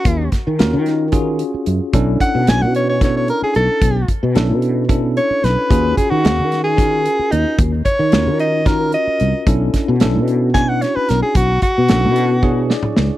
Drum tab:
HH |x-x-x-x-x-x-x-|x-x-x-x-x-x-x-|x-x-x-x-x-x-x-|x-x-x-x-x-x-x-|
SD |--o-o-o-------|----o---o-----|----o-------o-|----o-o-------|
T2 |--------------|--------------|--------------|--------------|
BD |o-o-----o-----|o-o-----o-----|o-o-----o-----|o-o-----o-----|

HH |x-x-x-x-x-x-x-|x-x-x-x-x-x-x-|x-x-x-x-------|
SD |----o---o-----|--o-o---o-o-o-|----o-----o-o-|
T2 |--------------|--------------|-----------o--|
BD |o-o-----o-----|o-o-----o-----|o-o-----o-----|